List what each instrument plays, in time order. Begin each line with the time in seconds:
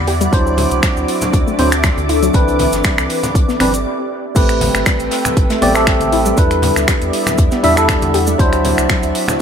Already playing: sub bass E2, analog synth pad B3 E4 G4 D5, ambient pad E4 F#5, string machine D6
0.07 synth arpeggio sound G4, closed hi-hat, open hi-hat
0.21 synth arpeggio sound G3, closed hi-hat, cabasa
0.32 sub bass D2, tine electric piano F#3 D4 E4 C5, analog synth pad C4 F#4, ambient pad D4, kick, closed hi-hat, cabasa
0.47 cabasa
0.57 ambient pad E5, closed hi-hat, open hi-hat, high conga, low conga
0.71 sub bass C2, closed hi-hat, cabasa
0.76 ambient pad A4
0.83 synth arpeggio sound F#3, finger snap, kick, snare, closed hi-hat, cabasa
0.97 sub bass D2, cabasa
1.08 closed hi-hat, open hi-hat
1.21 snare, closed hi-hat, high conga, low conga, cabasa
1.33 sub bass D2, kick, closed hi-hat, cabasa
1.47 synth arpeggio sound A3, cabasa
1.58 sub bass D2, tine electric piano F#3 D4 E4 C5, synth arpeggio sound C4, closed hi-hat, open hi-hat, low conga
1.72 finger snap, closed hi-hat, cabasa
1.84 synth arpeggio sound F#3, finger snap, kick, snare, closed hi-hat, cabasa
1.97 sub bass D2, closed hi-hat, high conga, cabasa
2.09 synth arpeggio sound E4, closed hi-hat, open hi-hat
2.23 synth arpeggio sound F#3, closed hi-hat, cabasa
2.33 sub bass C2, tine electric piano E3 C4 D4 B4, ambient pad C4, analog synth pad B4, kick, closed hi-hat, cabasa
2.48 closed hi-hat, cabasa
2.59 ambient pad G4, closed hi-hat, open hi-hat, high conga, low conga
2.72 sub bass G1, snare, closed hi-hat, cabasa
2.84 synth arpeggio sound G3, finger snap, kick, snare, closed hi-hat, cabasa
2.98 sub bass C2, finger snap, cabasa
3.10 closed hi-hat, open hi-hat
3.23 snare, closed hi-hat, high conga, low conga, cabasa
3.35 sub bass C2, kick, closed hi-hat, cabasa
3.49 synth arpeggio sound B3, snare, cabasa
3.60 sub bass G1, tine electric piano E3 C4 D4 B4, synth arpeggio sound C4, finger snap, closed hi-hat, open hi-hat, low conga
3.74 closed hi-hat, cabasa
4.35 sub bass A1, tine electric piano A3 C4 G4 B4, analog synth pad C4 A4 B4 G5, ambient pad A4, kick, closed hi-hat, crash, cabasa
4.47 ambient pad E5, finger snap, closed hi-hat, cabasa
4.61 closed hi-hat, open hi-hat, high conga, low conga
4.75 sub bass G1, finger snap, closed hi-hat, cabasa
4.86 synth arpeggio sound G3, finger snap, kick, snare, closed hi-hat, cabasa
5.00 sub bass A1, closed hi-hat, cabasa
5.11 snare, closed hi-hat, open hi-hat
5.25 ambient pad B5, finger snap, closed hi-hat, high conga, low conga, cabasa
5.37 sub bass A1, kick, closed hi-hat, cabasa
5.50 synth arpeggio sound A3, snare, closed hi-hat, cabasa
5.61 sub bass A1, tine electric piano A3 C4 G4 D5, synth arpeggio sound B3, open hi-hat, low conga
5.74 tine electric piano A3 C4 G4 A4, finger snap, closed hi-hat, cabasa
5.87 synth arpeggio sound G3, finger snap, kick, snare, closed hi-hat, cabasa
6.00 sub bass A1, closed hi-hat, high conga, cabasa
6.12 synth arpeggio sound E4, closed hi-hat, open hi-hat
6.26 synth arpeggio sound G3, closed hi-hat, cabasa
6.37 sub bass E2, tine electric piano G3 D4 E4 B4, analog synth pad B3 G4 D5 E5, ambient pad E4, kick, closed hi-hat, cabasa
6.51 finger snap, closed hi-hat, cabasa
6.62 closed hi-hat, open hi-hat, high conga, low conga
6.76 sub bass D2, finger snap, snare, closed hi-hat, cabasa
6.88 synth arpeggio sound G3, finger snap, kick, snare, closed hi-hat, cabasa
6.98 sub bass E2, ambient pad F#5, closed hi-hat
7.02 cabasa
7.13 closed hi-hat, open hi-hat
7.27 finger snap, snare, closed hi-hat, high conga, low conga, cabasa
7.38 sub bass E2, kick, closed hi-hat, cabasa
7.51 synth arpeggio sound B3, snare, closed hi-hat, cabasa
7.63 sub bass E2, tine electric piano G3 D4 E4 E5, synth arpeggio sound D4, closed hi-hat, open hi-hat, low conga
7.76 tine electric piano G3 D4 E4 A4, finger snap, cabasa
7.88 synth arpeggio sound G3, finger snap, kick, snare, closed hi-hat, cabasa
8.02 sub bass E2, closed hi-hat, high conga, cabasa
8.14 synth arpeggio sound G4, closed hi-hat, open hi-hat
8.27 synth arpeggio sound G3, closed hi-hat, cabasa
8.38 sub bass D2, tine electric piano F#3 D4 E4 C5, analog synth pad C4 F#4, ambient pad D4, kick, closed hi-hat, cabasa
8.53 finger snap, closed hi-hat, cabasa
8.65 closed hi-hat, open hi-hat, high conga, low conga
8.78 sub bass C2, finger snap, closed hi-hat, cabasa
8.89 synth arpeggio sound F#3, finger snap, kick, snare, closed hi-hat, cabasa
9.03 sub bass D2, ambient pad A4, closed hi-hat, cabasa
9.09 ambient pad E5
9.15 closed hi-hat, open hi-hat
9.28 finger snap, snare, closed hi-hat, high conga, low conga, cabasa